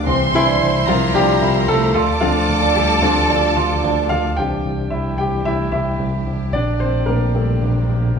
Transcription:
0.06 C2 E3 G3 C4 G4 C5 E5 C6
0.33 C2 E3 E4
0.47 D4
0.61 C2
0.87 C2 F3 C4 F4 A#4 A#5
1.14 C2 G3 D4 G4
1.41 C2 E4
1.68 C2 A3 A4
1.94 D2 A3 F4 A4 D5 F5 A5 D6
2.21 F3 A3 C4 D4 F4
2.49 D2
2.62 D4
2.75 D2 G3 G4
3.01 D2 F3 A3 C4 D4 F4
3.29 D2 D4
3.57 D2 F4
3.83 D2 D4
4.09 D2 F4 F5
4.36 C2 E3 G3 C4 D4 G4 G5
4.65 C2
4.90 C2 E4 E5
5.17 C2 G4 G5
5.45 C2 E4 E5
5.72 C2 E4 E5
5.99 C2
6.26 C2
6.52 A#1 D3 G3 A#3 D4 D5
6.80 A#1 C4 C5
7.06 A#1 A#3 A#4
7.34 A#1 G3 A#3 A4
7.61 A#1
7.89 A#1

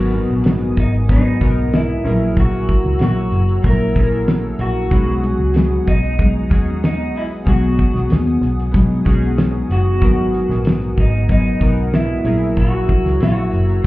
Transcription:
Already playing: G#1 G#2 F#3 B3 D#4 F#4 A#4 F#5 G#5 D#6
0.12 F#3 B3 D#4, closed hi-hat
0.29 A#1
0.44 G#2 F#3 B3, snare, closed hi-hat
0.48 D#4
0.60 closed hi-hat
0.77 G#1 D#4, kick, closed hi-hat
0.94 closed hi-hat
1.08 G#2 F#3 B3 D#4, kick, closed hi-hat
1.41 B1 B3 D#4 F#4 A#4, kick, closed hi-hat
1.74 E4, snare, closed hi-hat
2.04 A#1 A#2 F#3 C#4 E4 G#4 A#4 C#5 A#5 E6, closed hi-hat
2.37 A#1 F#4, kick, closed hi-hat
2.69 kick, closed hi-hat
2.85 C#2
2.99 A#1 A#2 F#3 C#4 F#4, snare, closed hi-hat
3.03 E4
3.16 closed hi-hat
3.32 F#1, closed hi-hat
3.49 closed hi-hat
3.62 A#1 A#2 F#3, kick, closed hi-hat
3.66 C#4 E4 A#4
3.95 A#1 C#4 E4 G#4 A4, kick, closed hi-hat
4.04 A#4
4.28 snare, closed hi-hat
4.59 A#1 F#4, closed hi-hat
4.90 B1 B2 F#3 G#3 B3 C#4 D#4 F#4 G#4 G#5 D#6, kick, closed hi-hat
5.22 F#3 G#3 D#4, closed hi-hat
5.39 C#2
5.54 B2 F#3 G#3, snare, closed hi-hat
5.58 D#4
5.87 B1 D#4, kick, closed hi-hat
6.04 closed hi-hat
6.19 F#3 G#3, kick, closed hi-hat
6.50 D#2 C#4 D#4 F#4 G#4, kick, closed hi-hat
6.84 D#4, snare, closed hi-hat
7.15 A#1 E4, open hi-hat
7.44 B1 B2 F#3 C#4 D#4 F#4 G#4, kick, closed hi-hat
7.49 G#3 D#4 F#4
7.79 kick, closed hi-hat
7.94 B1, snare
8.09 D#2, snare, closed hi-hat
8.27 closed hi-hat
8.41 B1, closed hi-hat
8.60 closed hi-hat
8.71 B2 F#3, kick, closed hi-hat
8.75 G#3 D#4
9.05 B1 C#4 D#4 F#4 G#4, kick, closed hi-hat
9.38 snare, closed hi-hat
9.70 F#1 F#4, closed hi-hat
9.99 G#1 G#2 F#3 B3 D#4 F#4, kick, closed hi-hat
10.03 B3 D#4 A#4
10.34 closed hi-hat
10.49 A#1, snare
10.65 snare, closed hi-hat
10.82 closed hi-hat
10.97 G#1 D#4, kick, closed hi-hat
11.28 G#2 F#3 B3 D#4, kick, closed hi-hat
11.60 B1 B3 D#4 F#4 A#4, kick, closed hi-hat
11.94 E4, snare, closed hi-hat
12.24 A#1 A#2 F#3 C#4 E4 G#4 A#4 C#5 A#5 E6, closed hi-hat
12.57 A#1 F#4, kick, closed hi-hat
12.88 F#3 C#4 E4, kick, closed hi-hat
13.05 C#2, snare
13.19 A#1 A#2 F#3 C#4 F#4, snare, closed hi-hat
13.23 E4
13.53 F#1, closed hi-hat
13.69 closed hi-hat
13.82 A#2

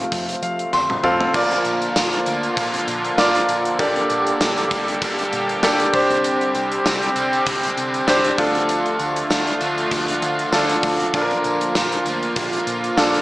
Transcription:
Already playing: C3 F3 A3 C4 F4 A4 F5
0.12 F2, kick, closed hi-hat, tambourine
0.29 closed hi-hat, tambourine
0.42 F3 F5, closed hi-hat, tambourine
0.59 closed hi-hat
0.73 F2 C6, high tom, tambourine
0.90 mid tom
1.03 F2 C4 F4 A4 F5, mid tom, tambourine
1.21 floor tom
1.34 A#1 A#2 D3 F3 A#3 F4 A#4 D5, kick, crash, tambourine
1.51 closed hi-hat
1.65 A#1, closed hi-hat, tambourine
1.82 closed hi-hat, tambourine
1.96 A#1, snare, tambourine
2.13 closed hi-hat
2.26 D2 F3 A#3, closed hi-hat, tambourine
2.43 closed hi-hat, tambourine
2.56 A#1 A#2 F3 A#3, kick, closed hi-hat, tambourine
2.74 closed hi-hat, tambourine
2.87 A#2, closed hi-hat, tambourine
3.04 closed hi-hat
3.17 A#1 A#2 F3 A#3 F4 A#4 D5, snare, tambourine
3.35 closed hi-hat
3.49 A#1, closed hi-hat, tambourine
3.65 closed hi-hat
3.79 A#1 G2 D3 G3 A#3 D4 G4 A4 D5, kick, closed hi-hat, tambourine
3.96 closed hi-hat
4.10 A#1, closed hi-hat, tambourine
4.27 closed hi-hat, tambourine
4.41 A#1, snare, tambourine
4.58 closed hi-hat
4.71 D2 D3 G3, kick, closed hi-hat, tambourine
4.88 closed hi-hat
5.01 A#1 G2 D3 G3, kick, closed hi-hat, tambourine
5.19 closed hi-hat, tambourine
5.32 A#2, closed hi-hat, tambourine
5.49 closed hi-hat
5.63 A#1 A#3 D4 G4 A4 D5, snare, tambourine
5.80 closed hi-hat
5.93 C2 C3 D3 G3 C4 D4 G4 C5, kick, closed hi-hat, tambourine
6.10 closed hi-hat
6.24 closed hi-hat, tambourine
6.41 closed hi-hat
6.55 C2, closed hi-hat, tambourine
6.72 closed hi-hat
6.85 C2, snare, tambourine
7.03 closed hi-hat
7.15 C2 G3 C4, closed hi-hat, tambourine
7.33 closed hi-hat, tambourine
7.46 C2 C3 G3 C4, kick, closed hi-hat, tambourine
7.63 closed hi-hat, tambourine
7.77 C3, closed hi-hat, tambourine
7.94 closed hi-hat, tambourine
8.07 C2 C3 G3 C4 D4 G4 C5, snare, tambourine
8.24 closed hi-hat
8.38 D2 D3 F3 A3 D4 F4 A4, kick, closed hi-hat, tambourine
8.55 closed hi-hat
8.69 closed hi-hat, tambourine
8.86 closed hi-hat
8.99 D2, closed hi-hat, tambourine
9.16 closed hi-hat
9.30 D2, snare, tambourine
9.47 closed hi-hat
9.60 D2 A3 D4, closed hi-hat, tambourine
9.78 closed hi-hat, tambourine
9.91 D2 D3 A3 D4, kick, closed hi-hat, tambourine
10.08 closed hi-hat, tambourine
10.22 D3, closed hi-hat, tambourine
10.39 closed hi-hat, tambourine
10.52 D2 D3 A3 D4 F4 A4, snare, tambourine
10.69 closed hi-hat
10.83 D2, kick, open hi-hat, tambourine
11.00 closed hi-hat
11.13 A#1 A#2 F3 A#3 D4 F4 A4, kick, closed hi-hat, tambourine
11.21 A#4
11.31 closed hi-hat
11.44 A#1, closed hi-hat, tambourine
11.61 closed hi-hat, tambourine
11.75 A#1, snare, tambourine
11.92 closed hi-hat
12.05 D2 F3 A#3, closed hi-hat, tambourine
12.23 closed hi-hat
12.36 A#1 A#2 F3 A#3, kick, closed hi-hat, tambourine
12.53 closed hi-hat, tambourine
12.67 A#2, closed hi-hat, tambourine
12.84 closed hi-hat, tambourine
12.97 A#1 A#2 F3 A#3 D4 F4 A4, snare, tambourine
13.14 closed hi-hat

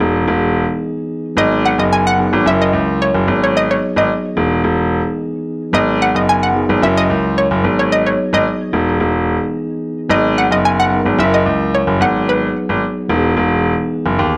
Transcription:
Already playing: D#5
0.00 E1 E3 B3 D#4 G#4
0.28 E1
1.36 G#1 F#3 B3 D#4 G#4 D#5
1.65 F#5
1.78 F#1 D#5
1.93 G#5
2.07 F#5
2.17 F#3 B3 D#4 G#4
2.32 G#1 F#3 B3 D#4 F#4
2.45 F#1 F#3 C#4 E4 A#4 E5
2.62 D#5
2.73 C#2
3.02 C#5
3.15 F#1
3.26 G#1 F#3 B3 D#4 G#4
3.44 C#5
3.57 D#5
3.71 C#5
3.96 G#1 D#5
4.35 E1 E3 B3 D#4 G#4
4.64 E1
5.72 G#1 F#3 B3 D#4 G#4 D#5
6.02 F#5
6.15 F#1 D#5
6.29 G#5
6.43 F#5
6.54 F#3 B3 D#4 G#4
6.68 G#1 F#3 B3 D#4 G#4
6.81 F#1 F#3 C#4 E4 A#4 E5
6.97 D#5
7.10 C#2
7.38 C#5
7.51 F#1
7.63 G#1 F#3 B3 D#4 G#4
7.79 C#5
7.92 D#5
8.06 C#5
8.33 G#1 D#5
8.72 E1 E3 B3 D#4 G#4
9.00 E1
10.08 G#1 F#3 B3 D#4 F#4 D#5
10.17 G#4
10.38 F#5
10.51 F#1 D#5
10.65 G#5
10.80 F#5
10.90 F#3 B3 D#4 A#4
11.04 G#1 F#3 B3 D#4 G#4
11.17 F#1 F#3 C#4 E4 A#4 E5
11.34 D#5
11.46 C#2
11.75 C#5
11.87 F#1
11.99 G#1 F#3 B3 D#4 G#4 F#5
12.29 B4
12.69 G#1
13.08 E1 E3 B3 D#4 F#4
13.17 G#4
13.37 E1
14.06 F#1
14.19 D#2

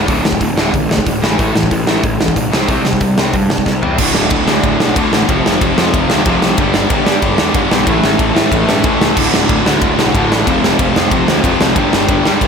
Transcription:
0.08 D1 D2 A2 D3, kick, open hi-hat
0.25 D1 D2 A2, snare
0.33 kick
0.40 D1 D2 A2, kick, open hi-hat
0.57 D1 D2 A2 D3, snare
0.73 A1 D2 A2, kick, open hi-hat
0.89 D2 A2, snare
0.98 kick
1.06 D1 D2 A2, kick, open hi-hat
1.22 A1 A2 E3 A3, snare
1.39 A1 A2 E3 A3, kick, open hi-hat
1.54 A1 A2 E3, snare
1.63 kick
1.71 A1 A2 E3, kick, open hi-hat
1.86 A1 A2 E3 A3, snare
2.03 A1 A2 E3, kick, open hi-hat
2.19 A2 E3, snare
2.28 kick
2.36 B1 A2 E3, kick, open hi-hat
2.51 C2 C3 G3 C4, snare
2.67 C2 C3 G3 C4, kick, open hi-hat
2.85 C2 C3 G3, snare
2.93 kick
3.00 C2 C3 G3, kick, open hi-hat
3.17 C2 C3 G3 C4, snare
3.33 G2 C3 G3, kick, open hi-hat
3.50 C3 G3, snare
3.58 kick
3.66 C2 C3 G3, kick, snare
3.81 E2 C3 G3 C4, floor tom
3.97 D1 D2 A2 D3, kick, crash
4.01 A3 F#4
4.15 D1, snare
4.30 D1, kick, ride
4.46 D2 A2 D3, snare
4.64 D1, kick, ride
4.78 B1 D2 A2 D3 A3 F#4, snare
4.94 D1 D2 A2 D3 A3, kick, ride
4.99 F#4
5.12 A1, snare
5.27 F1 F2 C3 F3 A3, kick, ride
5.31 C4 F4
5.45 F1, snare
5.61 F1, kick, ride
5.75 F2 C3 F3, snare
5.94 F1, kick, ride
6.09 D2 F2 C3 F3 A3 C4 F4, snare
6.25 F1 F2 C3 F3, kick, ride
6.29 A3 C4 F4
6.42 C2, snare
6.57 G1 G2 D3 G3 B3, kick, ride
6.61 D4 G4
6.74 G1, snare
6.90 G1, kick, ride
7.05 G2 D3 G3, snare
7.22 G1, kick, ride
7.36 E2 G2 D3 G3 B3 D4 G4, snare
7.53 G1 G2 D3 G3 B3 D4, kick, ride
7.57 G4
7.71 B1, snare
7.85 A1 A2 E3 A3 C#4, kick, ride
7.89 E4 A4
8.03 A1, snare
8.19 A1, kick, ride
8.34 A2 E3 A3, snare
8.52 A1, kick, ride
8.66 G2 A2 E3 A3 C#4 E4 A4, snare
8.83 A1 A2 E3 A3 C#4 E4, kick, ride
8.87 A4
9.00 C#2, snare
9.15 D1 D2 A2 D3 A3 F#4, kick, crash
9.34 D1, snare
9.49 D1, kick, ride
9.64 D2 A2 D3, snare
9.81 D1, kick, ride
9.96 B1 D2 A2 D3 A3 F#4, snare
10.12 D1 D2 A2 D3 A3, kick, ride
10.16 F#4
10.30 A1, snare
10.45 F1 F2 C3 F3 A3 C4, kick, ride
10.49 F4
10.62 F1, snare
10.79 F1, kick, ride
10.94 F2 C3 F3, snare
11.11 F1, kick, ride
11.26 D2 C3 F3 A3 C4 F4, snare
11.30 F2
11.42 F1 F2 C3 F3 A3 C4, kick, ride
11.46 F4
11.61 C2, snare
11.74 G1 G2 D3 G3 B3 D4 G4, kick, ride
11.93 G1, snare
12.09 G1, kick, ride
12.23 G2 D3 G3, snare
12.41 G1, kick, ride

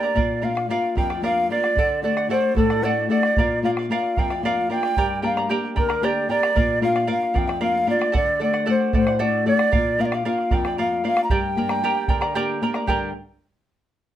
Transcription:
Already playing: A#3 D4 G4 D5
0.03 A#4 D5 A#5
0.15 A#2 A#4 D5 F5, bombo low
0.42 A#3 D4 F4 A#4 D5 F5
0.55 D5 F5, bombo rim
0.69 A#3 D4 F4 A#4 D5 F5
0.84 bombo rim
0.95 F2 A#4 D5 F5 G5, bombo rim, bombo low
1.10 D5 F5, bombo rim
1.22 A#3 D4 F4 A#4 D5 F5, bombo rim
1.49 A#3 D4 F4 A#4 D5 F5
1.64 D5 F5, bombo rim
1.75 D3 A4 D5 F#5, bombo low
2.02 A3 D4 F#4 A4 D5 F#5
2.17 D5 F#5, bombo rim
2.29 A3 D4 F#4 A4 C5 D5 F#5
2.44 bombo rim
2.55 A2 A4 D5 F#5, bombo rim, bombo low
2.70 D5 F#5, bombo rim
2.82 A3 D4 F#4 A4 D5 F#5, bombo rim
3.09 A3 D4 F#4 A4 D5 F#5
3.23 D5 F#5, bombo rim
3.36 A#2 A#4 D5 F5, bombo low
3.62 A#3 D4 F4 A#4 D5 F5
3.77 D5 F5, bombo rim
3.89 A#3 D4 F4 A#4 D5 F5
4.03 bombo rim
4.16 F2 A#4 D5 F5 G5, bombo rim, bombo low
4.30 D5 F5, bombo rim
4.42 A#3 D4 F4 A#4 D5 F5, bombo rim
4.69 A#3 D4 F4 A#4 D5 F5 G5
4.83 D5 F5, bombo rim
4.97 G2 G4 A#4 D5 G5 A#5, bombo rim, bombo low
5.11 bombo rim
5.22 A#3 D4 G4 A#4 D5 F5 G5 A#5, bombo rim
5.37 A#4 D5 A#5, bombo rim
5.49 A#3 D4 G4 A#4 D5 G5 A#5
5.64 bombo rim
5.76 D3 A#4 D5 G5 A#5, bombo rim, bombo low
5.89 A#4 D5 A#5, bombo rim
6.01 A#3 D4 G4 A#4 D5 G5 A#5, bombo rim
6.28 A#3 D4 G4 A#4 D5 G5 A#5
6.43 A#4 D5 A#5, bombo rim
6.55 A#2 A#4 D5 F5, bombo low
6.81 A#3 D4 F4 A#4 D5 F5
6.96 D5 F5, bombo rim
7.07 A#3 D4 F4 A#4 D5 F5
7.11 F5
7.23 bombo rim
7.34 F2 A#4 D5 F5, bombo rim, bombo low
7.38 G5
7.47 D5 F5, bombo rim
7.61 A#3 D4 F4 A#4 D5 F5, bombo rim
7.87 A#3 D4 F4 A#4 D5 F5
7.99 D5 F5, bombo rim
8.12 D3 A4 D5 F#5, bombo low
8.17 D5
8.39 A3 D4 F#4 A4 D5 F#5
8.53 D5 F#5, bombo rim
8.66 A3 D4 F#4 A4 D5 F#5
8.70 C5
8.81 bombo rim
8.93 A2 A4 C5 D5 F#5, bombo rim, bombo low
9.07 D5 F#5, bombo rim
9.19 A3 D4 F#4 A4 D5 F#5, bombo rim
9.46 A3 D4 F#4 A4 D5 F#5
9.59 D5 F#5, bombo rim
9.72 A#2 A#4 D5 F5, bombo low
9.99 A#3 D4 F4 A#4 D5 F5
10.06 D5
10.12 D5 F5, bombo rim
10.25 A#3 D4 F4 A#4 D5 F5
10.38 bombo rim
10.51 F2 A#4 D5 F5 G5, bombo rim, bombo low
10.65 D5 F5, bombo rim
10.78 A#3 D4 F4 A#4 D5 F5, bombo rim
11.04 A#3 D4 F4 A#4 D5 F5
11.17 D5 F5, bombo rim
11.24 A#5
11.30 G2 G4 A#4 D5 G5 A#5, bombo low
11.56 A#3 D4 G4 A#4 D5 G5 A#5
11.69 A#4 D5 A#5, bombo rim
11.83 A#3 D4 G4 A#4 D5 G5 A#5
11.95 bombo rim
12.08 D3 A#4 D5 G5 A#5, bombo low
12.21 A#4 D5 A#5, bombo rim
12.35 A#3 D4 G4 A#4 D5 G5 A#5
12.61 A#3 D4 G4 A#4 D5 G5 A#5
12.74 A#4 D5 A#5, bombo rim
12.86 G2 D3 D4 G4 A#4 D5 G5 A#5, bombo low

